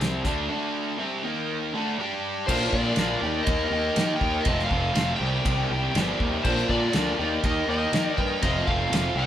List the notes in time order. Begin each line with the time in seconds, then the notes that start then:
Already playing: C2 C3 G3 C4
0.01 snare, closed hi-hat
0.23 D2 D3 A3 D4, kick, closed hi-hat
0.48 D3 A3 D4
0.98 C3 G3 C4
1.23 D#3 A#3 D#4
1.73 D3 A3 D4
1.99 G3 D4 G4
2.47 A#1 A#2 D3 A#3 D4 F4 C5, kick, crash
2.61 snare
2.69 A#2 F4 D5, kick
2.75 A#3 D4
2.96 A#1 D3 A#3 D4, snare, ride bell
3.00 F4
3.22 D#2 D#3 A#3 D#4 G4
3.44 D#5, kick, ride bell
3.48 D#2
3.66 D#5
3.71 D#2 D#4 G4
3.75 A#3
3.96 D#3 A#3 D#4 G4, snare, ride bell
4.16 G5
4.21 D#2, kick
4.41 D#5
4.45 F1 F2 C3 F3 A3 C4 F4, kick, ride bell
4.59 snare
4.65 F5
4.70 F1 F3 A3 C4 F4, kick
4.93 F1 F3 A3 C4 F4, snare, ride bell
5.16 C4 G4 G5
5.20 C2 C3 D#3 G3
5.45 C2, kick, ride bell
5.70 C2 G3 C4 G4
5.95 G1 C3 D#3 G3 C4 G4, snare, ride bell
6.20 D#2, kick
6.44 A#1 A#2 D3 A#3 D4 F4 C5, kick, crash
6.57 snare
6.69 A#2 A#3 D4 F4 D5, kick
6.93 D2 D3 A#3 D4 F4, snare, ride bell
7.19 D#2 D#3 A#3 D#4 G4
7.44 D#2 D#5, kick, ride bell
7.68 D#2 D#4 G4 D#5
7.72 A#3
7.93 D#3 A#3 D#4 G4, snare, ride bell
8.07 D5
8.17 G2 G5, kick
8.41 F1 F2 C3 F3 A3 C4 F4 D#5, kick, ride bell
8.66 F1 F3 A3 C4 F4 F5, kick
8.90 F1 F3 A3 C4 F4, snare, ride bell
9.14 C2 D#3 G3 C4 G4
9.18 C3 G5